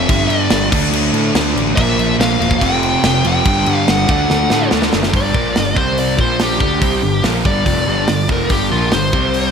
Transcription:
Already playing: E5
0.08 G1 G2 D3 G3, kick, crash
0.28 G2 D5, crash
0.50 G1, snare, crash
0.71 D2 D3 A3 D4, kick, crash
0.92 D2, crash
1.13 A2, crash
1.33 D2 D3 A3 D4, snare, crash
1.55 A1, crash
1.75 A#1 A#2 F3 A#3 E5, kick, crash
1.97 A#1, crash
2.18 A#1 F5, snare, crash
2.39 E1 A#2 F3 A#3, crash
2.51 kick
2.60 F1 F2 C3 F3 G5, kick, crash
2.83 crash
3.04 F1, snare, crash
3.24 F1 F2 C3 F3 G5, crash
3.45 G1 G2 D3 G3, kick, crash
3.66 G2, crash
3.75 F5
3.88 G1 F#5, snare, crash
4.08 D2 D3 A3 D4 F#5, kick, crash
4.30 D2, snare
4.50 A2, snare
4.70 D2 D3 A3 D4, snare
4.82 snare
4.93 F#1, snare
5.03 snare
5.12 G1 G2 D3 G3, kick, open hi-hat
5.16 D5
5.34 A#1 A#2 F3 A#3, kick
5.55 G1 G2 D3, snare, open hi-hat
5.74 C2 C3 G3 C4 C5, kick
5.98 D5, open hi-hat
6.18 A#1 A#2 F3 A#3 C5, kick
6.39 G4, snare, open hi-hat
6.60 D2 D3 A3 D4, kick
6.80 C2 C3 G3 C4, kick, open hi-hat
7.02 G1 G2 D3
7.23 A#1 A#2 F3 A#3, snare, open hi-hat
7.44 G1 G2 D3 G3 D5, kick
7.65 F1 F2 C3 F3, kick, open hi-hat
7.86 G1 G2 D3 G3
8.08 G1 G2 D3, snare, open hi-hat
8.28 F1 F2 C3 F3 A#4, kick
8.49 G1 G2 D3 G3 G4, kick, open hi-hat
8.71 A#1 A#2 F3 A#3 F4
8.92 G1 G2 D3 C5, snare, open hi-hat
9.12 C2 C3 G3 C4, kick
9.34 open hi-hat

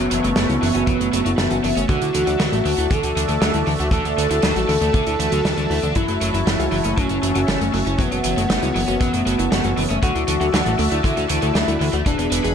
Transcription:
Already playing: B3 F#4 C#5 E5 A5, downlifter
0.11 F#1 E3 F#3, closed hi-hat
0.24 F#1 F#3 A3, closed hi-hat
0.36 F#1 A3, snare, closed hi-hat
0.49 C#2 C#4 E4, closed hi-hat
0.62 F#1 E3 F#3, open hi-hat
0.75 F#1 C#4 F#4, closed hi-hat
0.87 F#1 E3 F#3, kick, closed hi-hat
1.00 F#1 F#3 A3, closed hi-hat
1.13 F#1 F#3 A3, closed hi-hat
1.26 F#1 F#3 E4, closed hi-hat
1.38 F#1 E3 A3, snare, closed hi-hat
1.50 F#1 C#4 F#4, closed hi-hat
1.64 F#1 E3 F#3, open hi-hat
1.76 F#1 A3 C#4, closed hi-hat
1.89 D2 D3 A3 F#4 D5, kick, closed hi-hat
2.02 D2 D3 E4, closed hi-hat
2.14 D2 D3 E3, closed hi-hat
2.27 D2 D3 F#4, closed hi-hat
2.40 D2 E3 F#3, snare, closed hi-hat
2.52 A1 A3, closed hi-hat
2.65 D2 D3 A3, open hi-hat
2.78 D2 A3 E4, closed hi-hat
2.91 D2 D3 E3 A4, kick, closed hi-hat
3.03 D2 D3 F#4, closed hi-hat
3.16 D2 D3 E3, closed hi-hat
3.29 D2 D3 A3, closed hi-hat
3.42 D2 F#3 A3, snare, closed hi-hat
3.54 D2 A3 E4, closed hi-hat
3.67 D2 D3 E3, open hi-hat
3.80 D2 A3 F#4, closed hi-hat
3.91 D2 D3 E3 A4, kick, closed hi-hat
4.05 D2 D3 A3, closed hi-hat
4.18 D2 D3 A3, closed hi-hat
4.31 D2 D3 E4, closed hi-hat
4.42 D2 E3 F#3, snare, closed hi-hat
4.56 A1 A3 F#4, closed hi-hat
4.69 D2 D3 E3, open hi-hat
4.81 D2 A3, closed hi-hat
4.94 D2 D3 A3, kick, closed hi-hat
5.07 D2 D3 E4, closed hi-hat
5.19 D2 E3 A3, closed hi-hat
5.32 D2 D3 F#3, closed hi-hat
5.45 D2 E3 F#3, snare, closed hi-hat
5.57 D2 D3 E3, closed hi-hat
5.70 D2 A3 E4, open hi-hat
5.83 D2 E3 D4, closed hi-hat
5.95 F#1 E3 F#3 E4 C#5, kick, closed hi-hat
6.08 F#1 F#3 A3, closed hi-hat
6.21 F#1 F#3 A3, closed hi-hat
6.34 F#1 F#3 E4, closed hi-hat
6.47 F#1 E3 A3, snare, closed hi-hat
6.59 C#2 C#4 F#4, closed hi-hat
6.72 F#1 E3 F#3, open hi-hat
6.84 F#1 A3 C#4, closed hi-hat
6.97 F#1 F#3 A3 C#4, kick, closed hi-hat
7.09 F#1 F#3 E4, closed hi-hat
7.23 F#1 E3 F#3, closed hi-hat
7.35 F#1 F#3 F#4, closed hi-hat
7.48 F#1 E3 A3, snare, closed hi-hat
7.61 F#1 A3 C#4, closed hi-hat
7.74 F#1 F#3 A3, open hi-hat
7.86 F#1 C#4 E4, closed hi-hat
7.99 F#1 E3 F#3 B3, kick, closed hi-hat
8.12 F#1 F#3 F#4, closed hi-hat
8.24 F#1 E3 F#3, closed hi-hat
8.37 F#1 F#3 A3, closed hi-hat
8.50 F#1 A3, snare, closed hi-hat
8.62 C#2 C#4 E4, closed hi-hat
8.75 F#1 E3 F#3, open hi-hat
8.88 F#1 C#4 F#4, closed hi-hat
9.01 F#1 E3 F#3, kick, closed hi-hat
9.13 F#1 F#3 A3, closed hi-hat
9.26 F#1 F#3 A3, closed hi-hat
9.39 F#1 F#3 E4, closed hi-hat
9.52 F#1 E3 A3, snare, closed hi-hat
9.64 F#1 C#4 F#4, closed hi-hat
9.77 F#1 E3 F#3, open hi-hat
9.90 F#1 A3 C#4, closed hi-hat
10.03 D2 D3 A3 F#4 D5 E5 A5, kick, closed hi-hat
10.15 D2 D3 E4, closed hi-hat
10.28 D2 D3 E3, closed hi-hat
10.41 D2 D3 F#4, closed hi-hat
10.53 D2 E3 F#3, snare, closed hi-hat
10.66 A1 A3, closed hi-hat
10.79 D2 D3 A3, open hi-hat
10.92 D2 A3 E4, closed hi-hat
11.04 D2 D3 E3 E4, kick, closed hi-hat
11.17 D2 D3 F#4, closed hi-hat
11.29 D2 D3 E3, closed hi-hat
11.42 D2 D3 A3, closed hi-hat
11.55 D2 F#3 A3, snare, closed hi-hat
11.68 D2 A3 E4, closed hi-hat
11.80 D2 D3 E3, open hi-hat
11.93 D2 A3 F#4, closed hi-hat
12.06 E1 E3 D4 G#4 B4 B5, kick, closed hi-hat
12.19 E1 E3 B3, closed hi-hat
12.31 E1 E3 B3, closed hi-hat
12.44 E1 E3 G#4, closed hi-hat

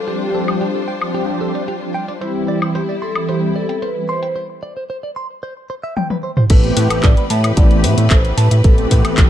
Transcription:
Already playing: G3 D4 F4 C5
0.07 F3 G3 C4 D4 G4, closed hi-hat
0.34 A4
0.47 F3 G3 C4 D4 G4, closed hi-hat, high woodblock
0.61 G4, closed hi-hat
0.75 A4
0.88 G5
1.01 F3 G3 C4 D4 G4, closed hi-hat, high woodblock
1.14 G4, closed hi-hat
1.41 F3 G3 C4 D4 G4 A4
1.55 D5, closed hi-hat
1.68 G4, closed hi-hat
1.81 F3 G3 C4 D4 G4
1.94 G5
2.08 D5, closed hi-hat
2.21 E3 G3 C4 E4 G4 C5, closed hi-hat
2.48 D5
2.62 E3 G3 B3 C4 G4 C5, closed hi-hat, high woodblock
2.75 G4 C5, closed hi-hat
2.89 D5
3.02 A4 C6
3.15 E3 G3 C4 G4, closed hi-hat, high woodblock
3.29 G4 C5, closed hi-hat
3.55 E3 G3 B3 C4 G4 A4 D5
3.69 G5, closed hi-hat
3.82 B4 C5, closed hi-hat
3.95 E3 G3 B3 C4 G4
4.09 C5 C6
4.23 G5, closed hi-hat
4.36 C5
4.63 D5
4.77 C5
4.90 C5
5.03 D5
5.16 C6
5.43 C5
5.70 C5
5.83 E5
5.97 G5, high tom
6.10 B4, high tom
6.23 C5
6.37 C5, mid tom
6.50 A1 E3 A3 B3 C4 G4 A4 B4, kick, closed hi-hat, crash, ride
6.64 closed hi-hat
6.77 A2 B4, open hi-hat, ride
6.90 A1 E3 A3 B3 C4 G4 A4, closed hi-hat, high woodblock
7.03 A1 A4 D5, kick, clap, closed hi-hat, ride
7.17 B4, closed hi-hat
7.30 A2 E5 A5, open hi-hat, ride
7.44 E3 A3 B3 C4 G4, closed hi-hat, high woodblock
7.57 A1 A4 D5, kick, closed hi-hat, ride
7.71 closed hi-hat
7.84 A2 E3 A3 B3 C4 G4 B4 E5, open hi-hat, ride
7.98 A2 E5, closed hi-hat
8.10 A1 A4 C5, kick, clap, closed hi-hat, ride
8.24 E3 A3 B3 C4 G4, closed hi-hat
8.38 A2 B4 A5, open hi-hat, ride
8.51 A2 E5, closed hi-hat
8.64 A1 E3 A3 B3 C4 G4 A4, kick, closed hi-hat, ride
8.78 closed hi-hat
8.91 A2 B4, kick, open hi-hat, ride
9.05 A1 E3 A3 B3 C4 G4 A4, closed hi-hat, high woodblock
9.17 A1 A4, kick, clap, closed hi-hat, ride

